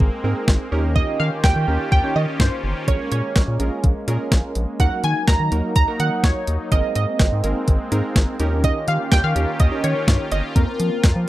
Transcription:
Already playing: G#3 A#3 C4 A#4
0.00 G#1, kick
0.24 G#2 C4 D#4 G#4 A#4
0.48 G#1, kick, snare
0.72 D#2 D#3 A#3 C#4 D#4 F4 G4 A#4
0.96 D#5, kick
1.20 D#3 F5
1.44 D#2 G5, kick, snare
1.56 D#3
1.68 D#2 C#4 D#4 G4 A#4
1.92 D#2 G5, kick
2.04 C#4 D#4 G4 C#5
2.16 D#3 D#5
2.40 G2 C5, kick, snare
2.64 G1
2.88 A#1 G#3 C#4 F4 G#4 A#4 C#5, kick, closed hi-hat
3.12 A#2 C#5, closed hi-hat
3.36 A#1, kick, snare, closed hi-hat
3.48 A#2
3.60 A#1 C#4 F4 G#4 A#4, closed hi-hat
3.84 A#1, kick, closed hi-hat
4.08 A#2 C#4 F4 G#4 A#4, closed hi-hat
4.32 A#1, kick, snare, closed hi-hat
4.55 A#1, closed hi-hat
4.79 D#2 F#3 A#3 D#4 F#4 A#4 F#5, kick, closed hi-hat
5.04 D#3 G#5, closed hi-hat
5.28 D#2 A#5, kick, snare, closed hi-hat
5.40 D#3
5.52 D#2 A#3 D#4 F#4 A#4, closed hi-hat
5.76 D#2 A#5, kick, closed hi-hat
5.88 A#3 D#4 F#4 A#4
6.00 D#3 F#5, closed hi-hat
6.24 D#2 C#5, kick, snare, closed hi-hat
6.47 D#2, closed hi-hat
6.71 G#1 G#3 C4 D#4 G#4 A#4 D#5, kick, closed hi-hat
6.95 G#2 D#5, closed hi-hat
7.19 G#1, kick, snare, closed hi-hat
7.32 G#2
7.44 G#1 C4 D#4 G#4 A#4, closed hi-hat
7.68 G#1, kick, closed hi-hat
7.92 G#2 C4 D#4 G#4 A#4, closed hi-hat
8.16 G#1, kick, snare, closed hi-hat
8.40 D#2 D#3 C#4 D#4 F4 G4 A#4, closed hi-hat
8.64 D#5, kick, closed hi-hat
8.88 D#3 F5, closed hi-hat
9.12 D#2 G5, kick, snare, closed hi-hat
9.24 D#3 F5
9.35 D#2 C#4 D#4 G4 A#4, closed hi-hat
9.60 D#2 D#5, kick, closed hi-hat
9.72 C#4 D#4 G4 A#4
9.84 D#3 C#5, closed hi-hat
10.08 G2, kick, snare, closed hi-hat
10.32 G1 D#5, closed hi-hat
10.56 F2 A#3 C4 F4 A#4, kick, closed hi-hat
10.80 F3, closed hi-hat
11.04 F2, kick, snare, closed hi-hat
11.16 F3

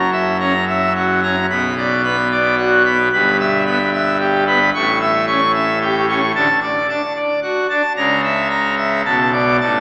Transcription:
Already playing: F#1 F#2 A#5
0.12 E5
0.40 C#4 A#5
0.68 E5
0.96 F#4
1.23 C#4 A#5
1.50 B1 B2 B5
1.78 D5
2.04 B3 B5
2.31 D5
2.58 F#4
2.85 B3 B5
3.13 G1 G2 B5
3.40 E5
3.66 B3 B5
3.94 E5
4.20 G4
4.47 B3 B5
4.74 A1 A2 C#6
5.02 E5
5.27 C#4 C#6
5.55 E5
5.82 G4
6.09 C#4 C#6
6.35 D2 D3 A5
6.62 D5
6.89 D4 A5
7.16 D5
7.43 F#4
7.70 D4 A5
7.97 C#2 C#3 A#5
8.23 E5
8.50 A#5
8.78 E5
9.05 B1 B2 A5
9.33 D5
9.61 A1 A2 A5

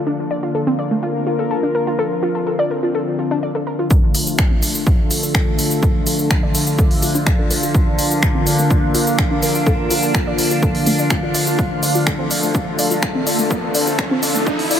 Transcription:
Already playing: D3 D4 F5
0.07 F3 A#3 D4 F4
0.31 D5
0.43 F4
0.55 A4 A#4
0.67 C4
0.79 D5
0.91 A3
1.03 F4
1.27 F4
1.39 A4
1.51 A4
1.63 D4
1.75 A#4
1.87 F4
1.99 C4 A4
2.23 F4
2.35 A4
2.47 A4
2.59 D5
2.71 A#4
2.83 F4
2.95 A4
3.19 F4
3.31 D4
3.43 D5
3.55 A4
3.67 A#4
3.79 F4
3.90 D3 F3 A3 D4 F4, kick, shaker
4.15 D5, open hi-hat, shaker
4.27 F4, shaker
4.39 A4, finger snap, kick, shaker
4.51 C4
4.63 D5, open hi-hat, shaker
4.75 A3, shaker
4.87 F4, kick, shaker
4.91 F5
5.11 F4, open hi-hat, shaker
5.23 A4, shaker
5.35 A4, finger snap, kick, shaker
5.47 D4
5.59 A4, open hi-hat, shaker
5.71 F4, shaker
5.83 A4, kick, shaker
6.07 F4, open hi-hat, shaker
6.19 A4, shaker
6.31 finger snap, kick, shaker
6.43 D5
6.55 A4, open hi-hat, shaker
6.67 F4, shaker
6.79 A4, kick, shaker
6.91 open hi-hat
7.03 F4, open hi-hat, shaker
7.15 D4, shaker
7.27 D5, finger snap, kick, shaker
7.39 A4
7.51 A4, open hi-hat, shaker
7.63 F4, shaker
7.75 A#3 D4, kick, shaker
7.97 A#4 D5, open hi-hat, shaker
8.11 F4, shaker
8.23 A4, finger snap, kick, shaker
8.35 C4
8.47 D5, open hi-hat, shaker
8.59 A3, shaker
8.71 F4, kick, shaker
8.95 F4, open hi-hat, shaker
9.07 A4, shaker
9.19 A4, finger snap, kick, shaker
9.31 D4
9.43 A#4, open hi-hat, shaker
9.55 F4, shaker
9.66 A4, kick, shaker
9.91 F4, open hi-hat, shaker
10.03 A4, shaker
10.15 A4, finger snap, kick, shaker
10.27 D5
10.39 A#4, open hi-hat, shaker
10.51 F4, shaker
10.62 A4, kick, shaker
10.75 open hi-hat
10.86 A3, open hi-hat, shaker
10.99 D5, shaker
11.10 F4, finger snap, kick, shaker
11.23 F4
11.35 D5, open hi-hat, shaker
11.47 F4, shaker
11.59 A3 D4, kick, riser, shaker
11.83 A4 D5, open hi-hat, shaker
11.95 F4, shaker
12.07 A4, finger snap, kick, shaker
12.19 C4
12.31 D5, open hi-hat, shaker
12.43 A3, shaker
12.55 D4, kick, shaker
12.79 D5, open hi-hat, shaker
12.91 F4, shaker
13.03 A4, finger snap, kick, shaker
13.15 C4
13.27 D5, open hi-hat, shaker
13.39 A3, shaker
13.51 D4, kick, shaker
13.75 D5, open hi-hat, shaker
13.87 F4, shaker
13.99 A4, finger snap, kick, shaker
14.11 C4
14.23 D5, open hi-hat, shaker
14.35 A3, shaker
14.47 D4, kick, shaker
14.59 open hi-hat
14.71 D5, open hi-hat, shaker

